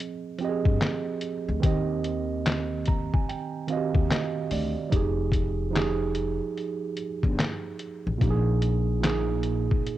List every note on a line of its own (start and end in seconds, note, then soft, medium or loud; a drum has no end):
0.00 0.39 F3 loud
0.00 0.41 C4 medium
0.00 0.49 G#4 medium
0.00 0.45 D#5 loud
0.00 closed hi-hat medium
0.39 1.32 F3 medium
0.39 1.33 C4 medium
0.39 0.50 G4 medium
0.39 closed hi-hat medium
0.45 1.35 D#5 medium
0.49 1.37 G#4 medium
0.66 0.79 G2 medium
0.66 kick loud
0.82 snare loud
0.82 clap medium
0.82 closed hi-hat medium
1.21 closed hi-hat medium
1.49 1.61 D2 medium
1.60 3.09 D#2 medium
1.60 2.83 D#3 medium
1.60 2.84 C4 medium
1.60 2.85 G4 medium
1.60 kick loud
1.60 closed hi-hat medium
1.66 2.86 D#5 loud
2.04 closed hi-hat medium
2.46 snare loud
2.46 clap medium
2.46 closed hi-hat medium
2.86 3.12 A#5 medium
2.86 kick medium
2.86 closed hi-hat medium
3.13 3.27 G#5 medium
3.13 kick loud
3.29 3.67 G5 medium
3.29 closed hi-hat medium
3.67 4.60 D#3 medium
3.67 4.61 C4 medium
3.67 3.78 F#4 medium
3.67 4.08 F5 medium
3.67 closed hi-hat medium
3.72 4.09 D#5 medium
3.77 4.65 G4 medium
3.94 4.08 D#2 medium
3.94 kick loud
4.10 4.48 D#5 medium
4.10 snare loud
4.10 clap medium
4.10 closed hi-hat medium
4.51 4.74 D2 medium
4.51 4.90 D5 medium
4.51 open hi-hat soft
4.89 6.38 F1 medium
4.89 5.56 F3 medium
4.89 5.57 D#4 medium
4.89 kick loud
4.89 closed hi-hat medium
4.94 5.58 G4 medium
4.94 5.59 G#4 medium
5.32 kick medium
5.32 closed hi-hat medium
5.71 6.94 F3 medium
5.71 6.95 D#4 medium
5.71 6.96 G4 medium
5.76 6.97 G#4 medium
5.76 snare loud
5.76 clap medium
5.76 closed hi-hat medium
6.15 closed hi-hat medium
6.58 closed hi-hat medium
6.97 closed hi-hat medium
7.23 7.37 G1 medium
7.23 kick loud
7.39 snare loud
7.39 clap medium
7.39 closed hi-hat medium
7.79 closed hi-hat medium
8.07 8.19 A1 medium
8.18 9.67 A#1 medium
8.18 8.85 A#2 medium
8.18 8.86 A#3 medium
8.18 8.87 D#4 medium
8.18 kick loud
8.18 closed hi-hat medium
8.23 8.30 G4 medium
8.30 8.91 G#4 loud
8.62 closed hi-hat medium
9.00 9.98 A#2 medium
9.00 9.98 A#3 medium
9.00 snare loud
9.00 clap medium
9.00 closed hi-hat medium
9.05 9.98 D#4 medium
9.05 9.98 G#4 medium
9.43 closed hi-hat medium
9.71 kick medium
9.87 closed hi-hat medium